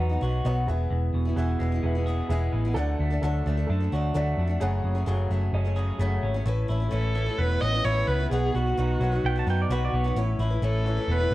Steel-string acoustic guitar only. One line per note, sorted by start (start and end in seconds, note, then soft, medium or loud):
0.00 0.12 B3 soft
0.00 0.10 D#4 soft
0.09 0.21 B3 soft
0.09 0.22 D#4 soft
0.09 0.21 F#4 medium
0.21 0.44 F#3 medium
0.21 0.45 B3 medium
0.21 0.45 D#4 medium
0.21 0.46 F#4 medium
0.45 0.68 B2 medium
0.45 0.68 F#3 medium
0.45 0.68 B3 medium
0.45 0.69 D#4 medium
0.45 0.69 F#4 loud
0.68 1.26 E3 medium
0.68 1.26 B3 medium
0.68 1.26 E4 medium
0.68 1.24 G#4 medium
1.25 1.37 B3 medium
1.25 1.37 E4 soft
1.25 1.37 G#4 medium
1.37 1.59 E3 medium
1.37 1.60 B3 medium
1.37 1.61 E4 medium
1.37 1.61 G#4 medium
1.60 1.72 E3 medium
1.60 1.72 B3 medium
1.60 1.73 E4 medium
1.60 1.71 G#4 medium
1.72 1.97 B3 soft
1.72 1.95 E4 medium
1.72 1.94 G#4 medium
1.95 2.07 B3 soft
1.95 2.07 E4 medium
1.95 2.07 G#4 medium
2.07 2.29 E3 medium
2.07 2.30 B3 medium
2.07 2.30 E4 medium
2.07 2.31 G#4 medium
2.30 2.65 E3 medium
2.30 2.65 B3 medium
2.30 2.65 E4 medium
2.30 2.64 G#4 loud
2.65 2.77 B3 soft
2.65 2.77 E4 medium
2.65 2.76 G#4 medium
2.76 3.11 D3 medium
2.76 3.11 F#3 medium
2.76 3.12 A3 medium
2.76 3.11 D4 medium
2.76 3.09 A4 medium
3.10 3.23 A3 soft
3.10 3.23 D4 medium
3.10 3.22 A4 medium
3.23 3.46 D3 medium
3.23 3.45 F#3 medium
3.23 3.46 A3 medium
3.23 3.46 D4 medium
3.23 3.47 A4 loud
3.46 3.57 F#3 medium
3.46 3.58 A3 medium
3.46 3.58 D4 medium
3.46 3.56 A4 medium
3.57 3.82 A3 soft
3.57 3.81 D4 medium
3.57 3.79 A4 medium
3.80 3.92 A3 soft
3.80 3.93 D4 soft
3.80 3.92 A4 medium
3.92 4.14 F#3 medium
3.92 4.14 A3 medium
3.92 4.15 D4 medium
3.92 4.15 A4 medium
4.14 4.49 D3 medium
4.14 4.50 F#3 medium
4.14 4.50 A3 loud
4.14 4.48 D4 medium
4.14 4.46 A4 loud
4.47 4.61 A3 medium
4.47 4.61 D4 medium
4.47 4.60 A4 medium
4.61 4.96 F#2 medium
4.61 4.96 C#3 medium
4.61 4.96 F#3 medium
4.61 4.96 A3 medium
4.61 4.95 C#4 loud
4.61 4.94 G#4 loud
4.95 5.06 F#3 medium
4.95 5.07 A3 soft
4.95 5.07 C#4 medium
4.95 5.07 G#4 medium
5.06 5.30 F#2 medium
5.06 5.31 C#3 medium
5.06 5.29 F#3 medium
5.06 5.31 A3 medium
5.06 5.31 C#4 medium
5.06 5.31 G#4 medium
5.31 5.65 F#3 medium
5.31 5.66 A3 medium
5.31 5.64 C#4 medium
5.31 5.63 G#4 medium
5.65 5.75 F#3 soft
5.65 5.76 A3 medium
5.65 5.77 C#4 medium
5.65 5.77 G#4 medium
5.76 6.00 F#3 medium
5.76 6.00 A3 medium
5.76 6.00 C#4 medium
5.76 6.01 G#4 medium
5.99 6.35 F#2 medium
5.99 6.35 C#3 medium
5.99 6.35 F#3 medium
5.99 6.35 A3 medium
5.99 6.35 C#4 medium
5.99 6.33 G#4 loud
6.34 6.45 F#3 soft
6.34 6.44 A3 medium
6.34 6.47 C#4 medium
6.34 6.46 G#4 medium
6.46 6.67 A3 medium
6.46 6.69 C#4 medium
6.46 6.69 E4 loud
6.46 6.70 B4 medium
6.68 6.81 A3 medium
6.68 6.81 C#4 medium
6.68 6.81 E4 medium
6.68 6.79 B4 medium
6.80 6.91 C#4 medium
6.80 6.90 E4 soft
6.80 6.92 B4 medium
6.91 7.14 A3 medium
6.91 7.16 C#4 medium
6.91 7.14 E4 medium
6.91 7.16 B4 medium
7.15 7.27 A3 medium
7.15 7.27 C#4 medium
7.15 7.27 E4 medium
7.15 7.25 B4 medium
7.26 7.50 C#4 soft
7.26 7.51 E4 soft
7.26 7.48 B4 soft
7.50 7.62 C#4 soft
7.50 7.60 E4 soft
7.50 7.62 B4 soft
7.60 7.73 A3 medium
7.60 7.74 C#4 medium
7.60 7.74 E4 medium
7.60 7.72 B4 medium
7.73 7.85 C#4 soft
7.73 7.84 E4 soft
7.73 7.85 B4 soft
7.84 8.20 A3 medium
7.84 8.20 C#4 medium
7.84 8.20 E4 medium
7.84 8.18 B4 medium
8.20 8.32 C#4 medium
8.20 8.32 E4 soft
8.20 8.32 B4 medium
8.31 8.55 B2 medium
8.31 8.54 B3 medium
8.31 8.55 D#4 medium
8.31 8.56 F#4 medium
8.31 8.56 B4 medium
8.55 8.67 B3 medium
8.55 8.67 D#4 medium
8.55 8.67 F#4 medium
8.55 8.65 B4 medium
8.66 8.77 D#4 soft
8.66 8.78 F#4 soft
8.66 8.78 B4 medium
8.78 9.01 B2 medium
8.78 9.00 B3 medium
8.78 9.01 D#4 medium
8.78 9.02 F#4 medium
8.78 9.02 B4 medium
9.01 9.13 B3 medium
9.01 9.13 D#4 medium
9.01 9.12 F#4 medium
9.01 9.11 B4 medium
9.12 9.37 D#4 soft
9.12 9.36 F#4 medium
9.12 9.34 B4 medium
9.36 9.46 D#4 soft
9.36 9.48 F#4 medium
9.36 9.47 B4 medium
9.47 9.70 B3 medium
9.47 9.71 D#4 medium
9.47 9.71 F#4 medium
9.47 9.72 B4 medium
9.71 10.05 B2 loud
9.71 10.06 B3 medium
9.71 10.06 D#4 medium
9.71 10.04 F#4 loud
9.71 10.03 B4 medium
10.04 10.17 D#4 medium
10.04 10.17 F#4 medium
10.04 10.16 B4 medium
10.16 10.38 A3 medium
10.16 10.40 C#4 loud
10.16 10.39 E4 medium
10.16 10.41 B4 medium
10.39 10.51 A3 medium
10.39 10.51 C#4 medium
10.39 10.52 E4 medium
10.39 10.49 B4 medium
10.50 10.63 C#4 soft
10.50 10.62 E4 soft
10.50 10.63 B4 medium
10.62 10.85 A3 medium
10.62 10.87 C#4 medium
10.62 10.86 E4 medium
10.62 10.87 B4 medium
10.86 10.98 A3 medium
10.86 10.97 C#4 medium
10.86 10.98 E4 medium
10.86 10.95 B4 medium
10.97 11.20 C#4 soft
10.97 11.22 E4 soft
10.97 11.19 B4 soft
11.20 11.33 C#4 soft
11.20 11.32 E4 soft
11.20 11.32 B4 medium
11.31 11.34 A3 medium